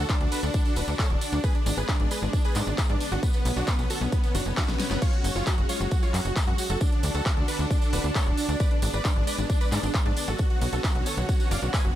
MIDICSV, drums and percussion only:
0, 0, Header, 1, 2, 480
1, 0, Start_track
1, 0, Tempo, 447761
1, 1542, Time_signature, 4, 2, 24, 8
1, 12815, End_track
2, 0, Start_track
2, 0, Title_t, "Drums"
2, 100, Note_on_c, 9, 54, 51
2, 101, Note_on_c, 9, 39, 112
2, 101, Note_on_c, 9, 42, 77
2, 102, Note_on_c, 9, 36, 117
2, 207, Note_off_c, 9, 54, 0
2, 209, Note_off_c, 9, 36, 0
2, 209, Note_off_c, 9, 39, 0
2, 209, Note_off_c, 9, 42, 0
2, 221, Note_on_c, 9, 42, 55
2, 329, Note_off_c, 9, 42, 0
2, 341, Note_on_c, 9, 46, 102
2, 344, Note_on_c, 9, 54, 86
2, 448, Note_off_c, 9, 46, 0
2, 451, Note_off_c, 9, 54, 0
2, 461, Note_on_c, 9, 42, 51
2, 461, Note_on_c, 9, 54, 38
2, 568, Note_off_c, 9, 42, 0
2, 568, Note_off_c, 9, 54, 0
2, 576, Note_on_c, 9, 54, 52
2, 581, Note_on_c, 9, 42, 79
2, 582, Note_on_c, 9, 36, 112
2, 683, Note_off_c, 9, 54, 0
2, 688, Note_off_c, 9, 42, 0
2, 689, Note_off_c, 9, 36, 0
2, 702, Note_on_c, 9, 42, 50
2, 702, Note_on_c, 9, 54, 33
2, 809, Note_off_c, 9, 42, 0
2, 809, Note_off_c, 9, 54, 0
2, 817, Note_on_c, 9, 54, 98
2, 821, Note_on_c, 9, 46, 105
2, 924, Note_off_c, 9, 54, 0
2, 928, Note_off_c, 9, 46, 0
2, 941, Note_on_c, 9, 54, 41
2, 942, Note_on_c, 9, 42, 55
2, 1048, Note_off_c, 9, 54, 0
2, 1049, Note_off_c, 9, 42, 0
2, 1061, Note_on_c, 9, 39, 116
2, 1061, Note_on_c, 9, 42, 78
2, 1062, Note_on_c, 9, 36, 118
2, 1068, Note_on_c, 9, 54, 50
2, 1169, Note_off_c, 9, 36, 0
2, 1169, Note_off_c, 9, 39, 0
2, 1169, Note_off_c, 9, 42, 0
2, 1175, Note_off_c, 9, 54, 0
2, 1182, Note_on_c, 9, 42, 50
2, 1289, Note_off_c, 9, 42, 0
2, 1300, Note_on_c, 9, 54, 81
2, 1302, Note_on_c, 9, 46, 100
2, 1407, Note_off_c, 9, 54, 0
2, 1409, Note_off_c, 9, 46, 0
2, 1417, Note_on_c, 9, 54, 41
2, 1422, Note_on_c, 9, 42, 55
2, 1524, Note_off_c, 9, 54, 0
2, 1529, Note_off_c, 9, 42, 0
2, 1541, Note_on_c, 9, 42, 80
2, 1542, Note_on_c, 9, 36, 115
2, 1542, Note_on_c, 9, 54, 47
2, 1648, Note_off_c, 9, 42, 0
2, 1649, Note_off_c, 9, 36, 0
2, 1649, Note_off_c, 9, 54, 0
2, 1661, Note_on_c, 9, 42, 56
2, 1768, Note_off_c, 9, 42, 0
2, 1780, Note_on_c, 9, 46, 101
2, 1783, Note_on_c, 9, 54, 88
2, 1888, Note_off_c, 9, 46, 0
2, 1891, Note_off_c, 9, 54, 0
2, 1900, Note_on_c, 9, 42, 56
2, 1904, Note_on_c, 9, 54, 36
2, 2007, Note_off_c, 9, 42, 0
2, 2011, Note_off_c, 9, 54, 0
2, 2020, Note_on_c, 9, 39, 120
2, 2020, Note_on_c, 9, 42, 82
2, 2021, Note_on_c, 9, 36, 118
2, 2030, Note_on_c, 9, 54, 50
2, 2128, Note_off_c, 9, 39, 0
2, 2128, Note_off_c, 9, 42, 0
2, 2129, Note_off_c, 9, 36, 0
2, 2137, Note_off_c, 9, 54, 0
2, 2140, Note_on_c, 9, 42, 59
2, 2247, Note_off_c, 9, 42, 0
2, 2260, Note_on_c, 9, 46, 100
2, 2262, Note_on_c, 9, 54, 94
2, 2368, Note_off_c, 9, 46, 0
2, 2369, Note_off_c, 9, 54, 0
2, 2380, Note_on_c, 9, 42, 52
2, 2388, Note_on_c, 9, 54, 37
2, 2487, Note_off_c, 9, 42, 0
2, 2495, Note_off_c, 9, 54, 0
2, 2501, Note_on_c, 9, 42, 82
2, 2502, Note_on_c, 9, 36, 112
2, 2508, Note_on_c, 9, 54, 47
2, 2608, Note_off_c, 9, 42, 0
2, 2609, Note_off_c, 9, 36, 0
2, 2615, Note_off_c, 9, 54, 0
2, 2621, Note_on_c, 9, 42, 56
2, 2628, Note_on_c, 9, 54, 34
2, 2728, Note_off_c, 9, 42, 0
2, 2732, Note_off_c, 9, 54, 0
2, 2732, Note_on_c, 9, 54, 89
2, 2741, Note_on_c, 9, 39, 62
2, 2741, Note_on_c, 9, 46, 101
2, 2839, Note_off_c, 9, 54, 0
2, 2848, Note_off_c, 9, 39, 0
2, 2848, Note_off_c, 9, 46, 0
2, 2861, Note_on_c, 9, 42, 53
2, 2863, Note_on_c, 9, 54, 38
2, 2969, Note_off_c, 9, 42, 0
2, 2970, Note_off_c, 9, 54, 0
2, 2981, Note_on_c, 9, 36, 120
2, 2981, Note_on_c, 9, 39, 113
2, 2981, Note_on_c, 9, 42, 82
2, 2981, Note_on_c, 9, 54, 54
2, 3088, Note_off_c, 9, 39, 0
2, 3088, Note_off_c, 9, 42, 0
2, 3088, Note_off_c, 9, 54, 0
2, 3089, Note_off_c, 9, 36, 0
2, 3101, Note_on_c, 9, 42, 53
2, 3208, Note_off_c, 9, 42, 0
2, 3221, Note_on_c, 9, 46, 101
2, 3226, Note_on_c, 9, 54, 78
2, 3328, Note_off_c, 9, 46, 0
2, 3332, Note_off_c, 9, 54, 0
2, 3332, Note_on_c, 9, 54, 35
2, 3341, Note_on_c, 9, 42, 55
2, 3439, Note_off_c, 9, 54, 0
2, 3449, Note_off_c, 9, 42, 0
2, 3461, Note_on_c, 9, 36, 118
2, 3461, Note_on_c, 9, 42, 83
2, 3462, Note_on_c, 9, 54, 52
2, 3568, Note_off_c, 9, 36, 0
2, 3568, Note_off_c, 9, 42, 0
2, 3569, Note_off_c, 9, 54, 0
2, 3572, Note_on_c, 9, 54, 36
2, 3582, Note_on_c, 9, 42, 57
2, 3679, Note_off_c, 9, 54, 0
2, 3689, Note_off_c, 9, 42, 0
2, 3701, Note_on_c, 9, 46, 97
2, 3705, Note_on_c, 9, 54, 92
2, 3808, Note_off_c, 9, 46, 0
2, 3812, Note_off_c, 9, 54, 0
2, 3821, Note_on_c, 9, 42, 58
2, 3824, Note_on_c, 9, 54, 36
2, 3928, Note_off_c, 9, 42, 0
2, 3931, Note_off_c, 9, 54, 0
2, 3937, Note_on_c, 9, 54, 58
2, 3941, Note_on_c, 9, 36, 121
2, 3941, Note_on_c, 9, 39, 120
2, 3941, Note_on_c, 9, 42, 83
2, 4044, Note_off_c, 9, 54, 0
2, 4048, Note_off_c, 9, 39, 0
2, 4048, Note_off_c, 9, 42, 0
2, 4049, Note_off_c, 9, 36, 0
2, 4060, Note_on_c, 9, 42, 58
2, 4062, Note_on_c, 9, 54, 38
2, 4167, Note_off_c, 9, 42, 0
2, 4169, Note_off_c, 9, 54, 0
2, 4180, Note_on_c, 9, 46, 105
2, 4184, Note_on_c, 9, 54, 84
2, 4287, Note_off_c, 9, 46, 0
2, 4291, Note_off_c, 9, 54, 0
2, 4300, Note_on_c, 9, 42, 55
2, 4304, Note_on_c, 9, 54, 39
2, 4408, Note_off_c, 9, 42, 0
2, 4411, Note_off_c, 9, 54, 0
2, 4420, Note_on_c, 9, 42, 88
2, 4421, Note_on_c, 9, 36, 108
2, 4421, Note_on_c, 9, 54, 46
2, 4527, Note_off_c, 9, 42, 0
2, 4528, Note_off_c, 9, 54, 0
2, 4529, Note_off_c, 9, 36, 0
2, 4540, Note_on_c, 9, 54, 35
2, 4541, Note_on_c, 9, 42, 56
2, 4647, Note_off_c, 9, 54, 0
2, 4648, Note_off_c, 9, 42, 0
2, 4659, Note_on_c, 9, 54, 88
2, 4660, Note_on_c, 9, 46, 103
2, 4766, Note_off_c, 9, 54, 0
2, 4767, Note_off_c, 9, 46, 0
2, 4780, Note_on_c, 9, 42, 54
2, 4780, Note_on_c, 9, 54, 39
2, 4887, Note_off_c, 9, 42, 0
2, 4887, Note_off_c, 9, 54, 0
2, 4901, Note_on_c, 9, 38, 60
2, 4901, Note_on_c, 9, 39, 122
2, 4901, Note_on_c, 9, 42, 82
2, 4902, Note_on_c, 9, 36, 113
2, 4909, Note_on_c, 9, 54, 48
2, 5008, Note_off_c, 9, 38, 0
2, 5008, Note_off_c, 9, 39, 0
2, 5008, Note_off_c, 9, 42, 0
2, 5009, Note_off_c, 9, 36, 0
2, 5016, Note_off_c, 9, 54, 0
2, 5020, Note_on_c, 9, 38, 64
2, 5020, Note_on_c, 9, 42, 56
2, 5030, Note_on_c, 9, 54, 34
2, 5127, Note_off_c, 9, 38, 0
2, 5127, Note_off_c, 9, 42, 0
2, 5137, Note_off_c, 9, 54, 0
2, 5140, Note_on_c, 9, 38, 90
2, 5140, Note_on_c, 9, 46, 103
2, 5140, Note_on_c, 9, 54, 77
2, 5247, Note_off_c, 9, 38, 0
2, 5247, Note_off_c, 9, 46, 0
2, 5247, Note_off_c, 9, 54, 0
2, 5261, Note_on_c, 9, 38, 84
2, 5261, Note_on_c, 9, 42, 54
2, 5263, Note_on_c, 9, 54, 35
2, 5368, Note_off_c, 9, 38, 0
2, 5368, Note_off_c, 9, 42, 0
2, 5371, Note_off_c, 9, 54, 0
2, 5380, Note_on_c, 9, 42, 83
2, 5380, Note_on_c, 9, 49, 75
2, 5382, Note_on_c, 9, 36, 124
2, 5384, Note_on_c, 9, 54, 50
2, 5488, Note_off_c, 9, 42, 0
2, 5488, Note_off_c, 9, 49, 0
2, 5489, Note_off_c, 9, 36, 0
2, 5491, Note_off_c, 9, 54, 0
2, 5500, Note_on_c, 9, 42, 57
2, 5607, Note_off_c, 9, 42, 0
2, 5620, Note_on_c, 9, 46, 103
2, 5623, Note_on_c, 9, 54, 93
2, 5727, Note_off_c, 9, 46, 0
2, 5730, Note_off_c, 9, 54, 0
2, 5740, Note_on_c, 9, 42, 57
2, 5753, Note_on_c, 9, 54, 42
2, 5847, Note_off_c, 9, 42, 0
2, 5858, Note_off_c, 9, 54, 0
2, 5858, Note_on_c, 9, 54, 60
2, 5860, Note_on_c, 9, 39, 118
2, 5860, Note_on_c, 9, 42, 83
2, 5862, Note_on_c, 9, 36, 120
2, 5965, Note_off_c, 9, 54, 0
2, 5968, Note_off_c, 9, 39, 0
2, 5968, Note_off_c, 9, 42, 0
2, 5969, Note_off_c, 9, 36, 0
2, 5981, Note_on_c, 9, 42, 57
2, 6088, Note_off_c, 9, 42, 0
2, 6100, Note_on_c, 9, 46, 105
2, 6102, Note_on_c, 9, 54, 86
2, 6207, Note_off_c, 9, 46, 0
2, 6209, Note_off_c, 9, 54, 0
2, 6222, Note_on_c, 9, 42, 54
2, 6226, Note_on_c, 9, 54, 38
2, 6329, Note_off_c, 9, 42, 0
2, 6333, Note_off_c, 9, 54, 0
2, 6337, Note_on_c, 9, 54, 50
2, 6341, Note_on_c, 9, 42, 82
2, 6342, Note_on_c, 9, 36, 119
2, 6444, Note_off_c, 9, 54, 0
2, 6449, Note_off_c, 9, 36, 0
2, 6449, Note_off_c, 9, 42, 0
2, 6460, Note_on_c, 9, 42, 54
2, 6463, Note_on_c, 9, 54, 34
2, 6568, Note_off_c, 9, 42, 0
2, 6570, Note_off_c, 9, 54, 0
2, 6581, Note_on_c, 9, 39, 68
2, 6581, Note_on_c, 9, 46, 108
2, 6586, Note_on_c, 9, 54, 102
2, 6688, Note_off_c, 9, 39, 0
2, 6688, Note_off_c, 9, 46, 0
2, 6693, Note_off_c, 9, 54, 0
2, 6702, Note_on_c, 9, 42, 56
2, 6702, Note_on_c, 9, 54, 45
2, 6809, Note_off_c, 9, 42, 0
2, 6809, Note_off_c, 9, 54, 0
2, 6821, Note_on_c, 9, 36, 123
2, 6821, Note_on_c, 9, 39, 127
2, 6821, Note_on_c, 9, 42, 84
2, 6822, Note_on_c, 9, 54, 59
2, 6928, Note_off_c, 9, 36, 0
2, 6928, Note_off_c, 9, 39, 0
2, 6928, Note_off_c, 9, 42, 0
2, 6929, Note_off_c, 9, 54, 0
2, 6941, Note_on_c, 9, 42, 55
2, 7048, Note_off_c, 9, 42, 0
2, 7056, Note_on_c, 9, 54, 93
2, 7061, Note_on_c, 9, 46, 107
2, 7163, Note_off_c, 9, 54, 0
2, 7168, Note_off_c, 9, 46, 0
2, 7178, Note_on_c, 9, 54, 42
2, 7181, Note_on_c, 9, 42, 58
2, 7285, Note_off_c, 9, 54, 0
2, 7288, Note_off_c, 9, 42, 0
2, 7297, Note_on_c, 9, 54, 55
2, 7301, Note_on_c, 9, 36, 123
2, 7301, Note_on_c, 9, 42, 79
2, 7404, Note_off_c, 9, 54, 0
2, 7408, Note_off_c, 9, 36, 0
2, 7408, Note_off_c, 9, 42, 0
2, 7422, Note_on_c, 9, 42, 53
2, 7529, Note_off_c, 9, 42, 0
2, 7537, Note_on_c, 9, 54, 101
2, 7542, Note_on_c, 9, 46, 109
2, 7644, Note_off_c, 9, 54, 0
2, 7649, Note_off_c, 9, 46, 0
2, 7658, Note_on_c, 9, 54, 39
2, 7660, Note_on_c, 9, 42, 54
2, 7765, Note_off_c, 9, 54, 0
2, 7767, Note_off_c, 9, 42, 0
2, 7781, Note_on_c, 9, 36, 127
2, 7781, Note_on_c, 9, 39, 123
2, 7781, Note_on_c, 9, 42, 78
2, 7782, Note_on_c, 9, 54, 55
2, 7888, Note_off_c, 9, 36, 0
2, 7888, Note_off_c, 9, 39, 0
2, 7888, Note_off_c, 9, 42, 0
2, 7889, Note_off_c, 9, 54, 0
2, 7900, Note_on_c, 9, 42, 56
2, 8008, Note_off_c, 9, 42, 0
2, 8019, Note_on_c, 9, 54, 94
2, 8020, Note_on_c, 9, 46, 114
2, 8126, Note_off_c, 9, 54, 0
2, 8127, Note_off_c, 9, 46, 0
2, 8138, Note_on_c, 9, 54, 40
2, 8141, Note_on_c, 9, 42, 53
2, 8245, Note_off_c, 9, 54, 0
2, 8248, Note_off_c, 9, 42, 0
2, 8260, Note_on_c, 9, 42, 82
2, 8261, Note_on_c, 9, 36, 127
2, 8267, Note_on_c, 9, 54, 51
2, 8367, Note_off_c, 9, 42, 0
2, 8368, Note_off_c, 9, 36, 0
2, 8374, Note_off_c, 9, 54, 0
2, 8380, Note_on_c, 9, 42, 53
2, 8380, Note_on_c, 9, 54, 40
2, 8487, Note_off_c, 9, 42, 0
2, 8487, Note_off_c, 9, 54, 0
2, 8499, Note_on_c, 9, 46, 111
2, 8504, Note_on_c, 9, 54, 97
2, 8606, Note_off_c, 9, 46, 0
2, 8611, Note_off_c, 9, 54, 0
2, 8619, Note_on_c, 9, 42, 54
2, 8621, Note_on_c, 9, 54, 45
2, 8727, Note_off_c, 9, 42, 0
2, 8728, Note_off_c, 9, 54, 0
2, 8738, Note_on_c, 9, 39, 124
2, 8738, Note_on_c, 9, 42, 77
2, 8740, Note_on_c, 9, 36, 125
2, 8748, Note_on_c, 9, 54, 59
2, 8846, Note_off_c, 9, 39, 0
2, 8846, Note_off_c, 9, 42, 0
2, 8848, Note_off_c, 9, 36, 0
2, 8855, Note_off_c, 9, 54, 0
2, 8858, Note_on_c, 9, 42, 56
2, 8965, Note_off_c, 9, 42, 0
2, 8977, Note_on_c, 9, 46, 108
2, 8985, Note_on_c, 9, 54, 92
2, 9084, Note_off_c, 9, 46, 0
2, 9093, Note_off_c, 9, 54, 0
2, 9098, Note_on_c, 9, 42, 53
2, 9102, Note_on_c, 9, 54, 41
2, 9205, Note_off_c, 9, 42, 0
2, 9209, Note_off_c, 9, 54, 0
2, 9218, Note_on_c, 9, 42, 75
2, 9221, Note_on_c, 9, 36, 127
2, 9223, Note_on_c, 9, 54, 56
2, 9325, Note_off_c, 9, 42, 0
2, 9328, Note_off_c, 9, 36, 0
2, 9330, Note_off_c, 9, 54, 0
2, 9338, Note_on_c, 9, 42, 52
2, 9445, Note_off_c, 9, 42, 0
2, 9457, Note_on_c, 9, 46, 113
2, 9457, Note_on_c, 9, 54, 97
2, 9564, Note_off_c, 9, 46, 0
2, 9564, Note_off_c, 9, 54, 0
2, 9578, Note_on_c, 9, 42, 54
2, 9579, Note_on_c, 9, 54, 41
2, 9685, Note_off_c, 9, 42, 0
2, 9686, Note_off_c, 9, 54, 0
2, 9698, Note_on_c, 9, 54, 58
2, 9699, Note_on_c, 9, 39, 119
2, 9699, Note_on_c, 9, 42, 79
2, 9701, Note_on_c, 9, 36, 124
2, 9806, Note_off_c, 9, 39, 0
2, 9806, Note_off_c, 9, 42, 0
2, 9806, Note_off_c, 9, 54, 0
2, 9808, Note_off_c, 9, 36, 0
2, 9819, Note_on_c, 9, 42, 52
2, 9926, Note_off_c, 9, 42, 0
2, 9940, Note_on_c, 9, 46, 111
2, 9941, Note_on_c, 9, 54, 93
2, 10047, Note_off_c, 9, 46, 0
2, 10048, Note_off_c, 9, 54, 0
2, 10060, Note_on_c, 9, 42, 54
2, 10066, Note_on_c, 9, 54, 41
2, 10167, Note_off_c, 9, 42, 0
2, 10174, Note_off_c, 9, 54, 0
2, 10180, Note_on_c, 9, 42, 81
2, 10180, Note_on_c, 9, 54, 57
2, 10181, Note_on_c, 9, 36, 121
2, 10287, Note_off_c, 9, 54, 0
2, 10288, Note_off_c, 9, 36, 0
2, 10288, Note_off_c, 9, 42, 0
2, 10300, Note_on_c, 9, 42, 53
2, 10302, Note_on_c, 9, 54, 39
2, 10407, Note_off_c, 9, 42, 0
2, 10409, Note_off_c, 9, 54, 0
2, 10420, Note_on_c, 9, 39, 61
2, 10420, Note_on_c, 9, 46, 112
2, 10424, Note_on_c, 9, 54, 96
2, 10528, Note_off_c, 9, 39, 0
2, 10528, Note_off_c, 9, 46, 0
2, 10531, Note_off_c, 9, 54, 0
2, 10540, Note_on_c, 9, 42, 51
2, 10542, Note_on_c, 9, 54, 47
2, 10647, Note_off_c, 9, 42, 0
2, 10649, Note_off_c, 9, 54, 0
2, 10660, Note_on_c, 9, 39, 124
2, 10660, Note_on_c, 9, 42, 79
2, 10661, Note_on_c, 9, 36, 127
2, 10667, Note_on_c, 9, 54, 61
2, 10767, Note_off_c, 9, 39, 0
2, 10767, Note_off_c, 9, 42, 0
2, 10768, Note_off_c, 9, 36, 0
2, 10774, Note_off_c, 9, 54, 0
2, 10779, Note_on_c, 9, 42, 50
2, 10886, Note_off_c, 9, 42, 0
2, 10898, Note_on_c, 9, 46, 106
2, 10901, Note_on_c, 9, 54, 85
2, 11005, Note_off_c, 9, 46, 0
2, 11008, Note_off_c, 9, 54, 0
2, 11018, Note_on_c, 9, 42, 53
2, 11020, Note_on_c, 9, 54, 41
2, 11126, Note_off_c, 9, 42, 0
2, 11127, Note_off_c, 9, 54, 0
2, 11131, Note_on_c, 9, 54, 54
2, 11139, Note_on_c, 9, 42, 77
2, 11141, Note_on_c, 9, 36, 125
2, 11239, Note_off_c, 9, 54, 0
2, 11246, Note_off_c, 9, 42, 0
2, 11249, Note_off_c, 9, 36, 0
2, 11259, Note_on_c, 9, 42, 51
2, 11366, Note_off_c, 9, 42, 0
2, 11378, Note_on_c, 9, 54, 90
2, 11379, Note_on_c, 9, 46, 107
2, 11485, Note_off_c, 9, 54, 0
2, 11487, Note_off_c, 9, 46, 0
2, 11495, Note_on_c, 9, 54, 40
2, 11500, Note_on_c, 9, 42, 50
2, 11602, Note_off_c, 9, 54, 0
2, 11607, Note_off_c, 9, 42, 0
2, 11621, Note_on_c, 9, 36, 125
2, 11621, Note_on_c, 9, 39, 119
2, 11621, Note_on_c, 9, 42, 77
2, 11623, Note_on_c, 9, 54, 57
2, 11728, Note_off_c, 9, 36, 0
2, 11728, Note_off_c, 9, 39, 0
2, 11728, Note_off_c, 9, 42, 0
2, 11731, Note_off_c, 9, 54, 0
2, 11741, Note_on_c, 9, 42, 54
2, 11848, Note_off_c, 9, 42, 0
2, 11856, Note_on_c, 9, 54, 99
2, 11861, Note_on_c, 9, 46, 111
2, 11963, Note_off_c, 9, 54, 0
2, 11968, Note_off_c, 9, 46, 0
2, 11978, Note_on_c, 9, 54, 39
2, 11981, Note_on_c, 9, 42, 50
2, 12085, Note_off_c, 9, 54, 0
2, 12088, Note_off_c, 9, 42, 0
2, 12101, Note_on_c, 9, 36, 119
2, 12101, Note_on_c, 9, 42, 78
2, 12102, Note_on_c, 9, 54, 58
2, 12208, Note_off_c, 9, 42, 0
2, 12209, Note_off_c, 9, 36, 0
2, 12210, Note_off_c, 9, 54, 0
2, 12221, Note_on_c, 9, 42, 51
2, 12221, Note_on_c, 9, 54, 41
2, 12328, Note_off_c, 9, 42, 0
2, 12329, Note_off_c, 9, 54, 0
2, 12341, Note_on_c, 9, 46, 112
2, 12343, Note_on_c, 9, 54, 99
2, 12448, Note_off_c, 9, 46, 0
2, 12450, Note_off_c, 9, 54, 0
2, 12462, Note_on_c, 9, 42, 51
2, 12467, Note_on_c, 9, 54, 43
2, 12569, Note_off_c, 9, 42, 0
2, 12574, Note_off_c, 9, 54, 0
2, 12581, Note_on_c, 9, 36, 125
2, 12582, Note_on_c, 9, 39, 115
2, 12582, Note_on_c, 9, 42, 77
2, 12584, Note_on_c, 9, 54, 58
2, 12689, Note_off_c, 9, 36, 0
2, 12689, Note_off_c, 9, 39, 0
2, 12689, Note_off_c, 9, 42, 0
2, 12691, Note_off_c, 9, 54, 0
2, 12702, Note_on_c, 9, 42, 50
2, 12809, Note_off_c, 9, 42, 0
2, 12815, End_track
0, 0, End_of_file